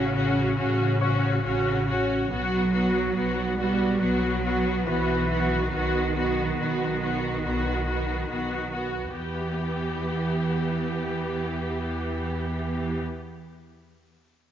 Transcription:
Already playing: A1 C#3 C#4 F#4
0.15 C#4 F#4
0.58 A1 C#4 F#4
1.01 C#4 F#4 C#5
1.45 A1 C#4 F#4
1.88 C#4 F#4
2.29 B1 F#3 B3 F#4
2.73 B3 F#4
3.15 B1 B3 F#4
3.58 G3 B3 F#4
4.01 B1 F#3 B3 F#4
4.44 B3 F#4
4.86 B1 E3 B3 F#4 B4
5.31 B3 F#4
5.72 B1 D#3 B3 F#4
6.16 B3 F#4
6.58 B1 B3 F#4
7.01 B3 F#4
7.43 B1 B3 F#4
7.87 B3 F#4
8.29 B1 B3 F#4
8.73 B3 F#4
9.14 E2 E3 B3 G4

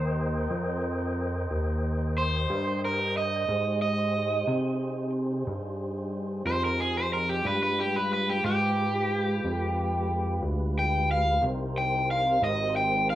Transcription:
Already playing: D#2 A#4 C5 D#5 G5
0.51 F2
1.51 D#2
2.18 C5
2.50 G2
2.85 A#4
3.17 D#5
3.48 G#2 D#4 G4 G#4 C5
3.82 D#5
4.47 C3
5.47 G2
6.45 F2 C5
6.65 A#4
6.80 G#4
6.97 C5
7.13 A#4
7.29 G4
7.42 G2 G#3 F4 G4 B4
7.46 B4
7.63 B4
7.80 G4
7.96 B4
8.13 B4
8.30 G4
8.44 G#2 G4
9.44 F2
10.42 D2
10.79 G5
11.11 F5
11.41 C2 D#4 G4 A#4 C5
11.78 G5
12.11 F5
12.42 G#1 D#5
12.76 G5
13.10 F5

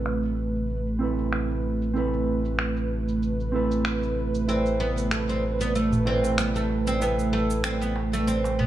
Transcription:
Already playing: A1 C3 A3 C4 E4 A4 B4
0.06 finger snap, shaker
0.24 shaker
0.56 shaker
0.70 shaker
0.87 shaker
0.99 C4 E4 A4 B4
1.19 shaker
1.33 finger snap, shaker
1.50 shaker
1.82 shaker
1.94 C4 E4 A4, shaker
1.98 B4
2.13 shaker
2.45 shaker
2.59 finger snap, shaker
2.77 shaker
3.08 shaker
3.23 shaker
3.40 shaker
3.52 C4 E4 A4 B4
3.71 shaker
3.85 finger snap, shaker
4.03 shaker
4.35 shaker
4.48 C4 E4 A4 B4, shaker
4.66 shaker
4.80 B3, darbuka ka
4.98 shaker
5.11 A3, finger snap, shaker
5.29 C4, shaker
5.43 darbuka ka
5.61 B3, shaker
5.75 A3, shaker
5.92 darbuka dum, shaker
6.05 C4 E4 A4 B4, darbuka ka, darbuka tek
6.24 darbuka tek, shaker
6.38 B3, finger snap, shaker
6.56 A3, shaker
6.69 darbuka tek
6.87 C4, shaker
7.00 B3 E4 A4 B4, shaker
7.19 shaker
7.32 A3, darbuka ka
7.50 shaker
7.64 C4, finger snap, shaker
7.82 B3, shaker
7.96 darbuka tek
8.13 A3, shaker
8.27 C4, shaker
8.44 darbuka tek, shaker
8.59 B3, darbuka dum

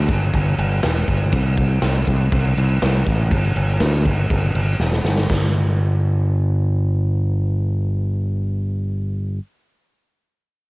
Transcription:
0.09 G1, kick, snare, crash
0.34 G1, kick, crash
0.58 G1, crash
0.83 E1, snare, crash
1.08 G1, kick, crash
1.32 C2, kick, crash
1.57 kick, crash
1.82 C2, snare, crash
2.07 C2, kick, crash
2.32 C2, kick, crash
2.57 C2, crash
2.82 C2, snare, crash
3.07 A1, kick, crash
3.31 G1, kick, crash
3.56 G1, crash
3.80 D2, snare, crash
3.93 snare
4.05 G1, kick, crash
4.30 G1, kick, crash
4.55 G1, crash
4.80 E1, snare
4.93 snare
5.04 G1, snare
5.18 snare
5.30 G1, kick, snare, china

